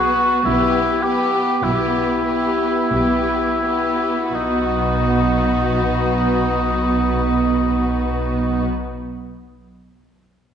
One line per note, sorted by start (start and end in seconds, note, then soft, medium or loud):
0.00 0.29 B1 soft
0.00 0.29 B2 soft
0.00 0.44 B3 soft
0.00 0.44 F#4 soft
0.00 0.44 F#4 medium
0.00 0.43 B4 soft
0.45 1.46 B1 soft
0.45 1.46 B2 soft
0.45 1.01 B3 soft
0.45 1.04 E4 medium
0.45 1.03 G4 soft
0.45 1.01 B4 soft
1.02 1.61 B3 soft
1.02 1.64 G4 soft
1.02 1.62 G4 soft
1.02 1.63 B4 soft
1.62 2.75 B1 soft
1.62 2.74 B2 soft
1.62 2.25 B3 soft
1.62 4.32 E4 soft
1.62 2.25 B4 soft
1.66 2.26 G4 soft
2.27 2.91 B3 soft
2.27 2.91 G4 soft
2.27 2.91 B4 soft
2.91 4.15 B1 soft
2.91 4.14 B2 soft
2.91 3.62 B3 soft
2.91 3.61 G4 soft
2.91 3.62 B4 soft
3.63 4.30 B3 soft
3.63 4.31 G4 soft
3.63 4.32 B4 soft
4.31 8.65 B1 soft
4.31 8.63 B2 soft
4.31 8.66 B3 soft
4.31 8.67 D#4 soft
4.31 8.64 F#4 soft
4.36 8.69 B4 soft